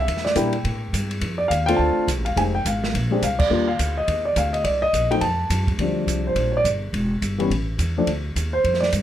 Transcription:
0.00 E5
0.08 E2, kick, ride
0.17 snare
0.25 D5, snare
0.35 A#2 G3 A#3 D4 E4 G5, kick, hi-hat pedal, ride
0.53 ride
0.64 A2, kick, ride
0.93 G2, kick, hi-hat pedal, ride
1.11 ride
1.21 F2, kick, ride
1.38 D5
1.48 D#2 F5, kick, hi-hat pedal, ride
1.66 A3 C4 D4 F4 G5, ride
1.76 D2 A5, kick
2.08 C2, kick, hi-hat pedal, ride
2.18 A1
2.25 F1 F5, ride
2.36 F1 G#3 C4 D#4 G4 G#5, kick, ride
2.55 G5
2.65 G#1 F5, kick, hi-hat pedal, ride
2.84 snare
2.94 A#1, kick, ride
3.11 G#3 C4 D4 G4
3.22 C2 F5, kick, hi-hat pedal, ride
3.39 D5, kick, crash
3.50 D#2 G3 A#3 D4 F4
3.68 F5
3.79 D2, kick, hi-hat pedal, ride
3.97 D#5
4.07 D#2, kick, ride
4.25 D5
4.36 D2 F5, kick, hi-hat pedal, ride
4.53 D#5, ride
4.64 C2 D5, kick, ride
4.82 D#5
4.93 A#1, kick, hi-hat pedal, ride
5.11 F#3 A3 C4 D#4 G5, ride
5.21 F2 A5, kick, ride
5.50 F#2, kick, hi-hat pedal, ride
5.67 kick, ride
5.78 D2 F3 G3 C4 D4, kick, ride
6.07 C2, kick, hi-hat pedal, ride
6.27 C5
6.35 A#1, kick, ride
6.57 D5
6.64 G1, kick, hi-hat pedal, ride
6.93 E1, kick, ride
7.21 G1, kick, hi-hat pedal, ride
7.38 E3 G3 B3 C#4, ride
7.50 A1, kick, ride
7.78 E2, kick, hi-hat pedal, ride
7.97 F3 A3 C4 D4
8.07 D2, kick, ride
8.36 D#2, kick, hi-hat pedal, ride
8.53 C5
8.64 F2, kick, ride
8.74 snare
8.80 D5, snare
8.92 G2, kick, hi-hat pedal, ride

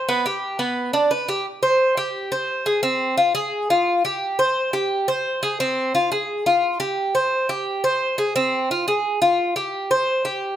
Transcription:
0.09 B3
0.26 G4
0.59 B3
0.93 D4
1.11 B4
1.28 G4
1.63 C5
1.97 G4
2.32 C5
2.66 G#4
2.83 C4
3.17 F4
3.35 G#4
3.70 F4
4.05 G4
4.39 C5
4.73 G4
5.08 C5
5.43 G#4
5.60 C4
5.95 F4
6.12 G#4
6.46 F4
6.80 G4
7.15 C5
7.49 G4
7.84 C5
8.18 G#4
8.36 C4
8.71 F4
8.88 G#4
9.22 F4
9.56 G4
9.91 C5
10.25 G4

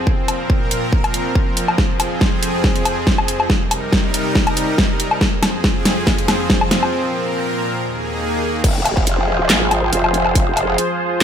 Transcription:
Already playing: C4
0.07 A#2 F3 A#4, kick
0.28 closed hi-hat, low woodblock
0.50 kick
0.71 closed hi-hat
0.93 kick
1.04 closed hi-hat, low woodblock
1.14 closed hi-hat
1.35 kick
1.57 closed hi-hat
1.68 low woodblock
1.78 F2 C4 G#4, kick, snare
2.00 closed hi-hat, low woodblock
2.21 kick, snare
2.43 closed hi-hat
2.64 kick, snare
2.76 closed hi-hat
2.85 closed hi-hat, low woodblock
3.07 kick, snare
3.18 low woodblock
3.28 closed hi-hat
3.40 low woodblock
3.50 C3 G3 D#4 A#4, kick, snare
3.71 closed hi-hat, low woodblock
3.93 kick, snare
4.14 closed hi-hat
4.35 kick, snare
4.47 closed hi-hat, low woodblock
4.57 closed hi-hat
4.78 kick, snare
5.00 closed hi-hat
5.11 low woodblock
5.21 F2 F3 C4 G#4, kick, snare
5.43 snare, closed hi-hat, low woodblock
5.64 kick, snare
5.85 snare, closed hi-hat
6.07 kick, snare
6.18 closed hi-hat
6.28 snare, closed hi-hat, low woodblock
6.50 kick, snare
6.61 low woodblock
6.71 snare, closed hi-hat
6.83 low woodblock
6.93 A#2 A#4
7.78 D#2 D#3 A#3 G#4
8.64 F1 F3 F4 G#4 C5, kick, closed hi-hat, crash
8.85 closed hi-hat, low woodblock
8.97 kick
9.07 F1, closed hi-hat
9.50 G#1, snare, clap, closed hi-hat
9.71 closed hi-hat, low woodblock
9.93 F1, closed hi-hat
10.04 low woodblock
10.14 closed hi-hat
10.26 low woodblock
10.35 F1, kick, closed hi-hat
10.57 closed hi-hat, low woodblock
10.78 closed hi-hat

